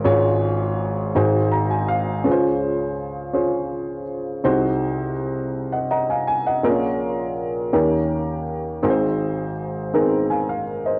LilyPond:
<<
  \new Staff \with { instrumentName = "Upright piano" } { \time 6/8 \key des \major \tempo 4. = 55 << { r2 bes''16 aes''16 f''8 | r2. | r4. r16 <ees'' ges''>16 <ees'' ges'' bes''>16 <f'' aes''>16 aes''16 <ees'' ges''>16~ | <ees'' ges''>16 r2 r8. |
r2 <f'' aes''>16 f''8 <c'' ees''>16 | } \\ { <des' f' aes' des''>4 r8 <ees' ges' aes' c''>4 r8 | <des' f' aes' ces'' c''>4 r8 <des' f' aes' c''>4 r8 | <ees' ges' aes' c''>4 r2 | <c' des' f' aes' bes'>4 r8 <des' ees' g' bes'>4 r8 |
<c' ees' aes' bes' c''>4 r8 <ces' c' ees' aes' bes'>4 r8 | } >> }
  \new Staff \with { instrumentName = "Upright piano" } { \clef bass \time 6/8 \key des \major <aes,, aes,>4. <aes,, aes,>4. | <des, des>2. | <c, c>2. | <bes,, bes,>4. <ees, ees>4. |
<aes,, aes,>2. | }
>>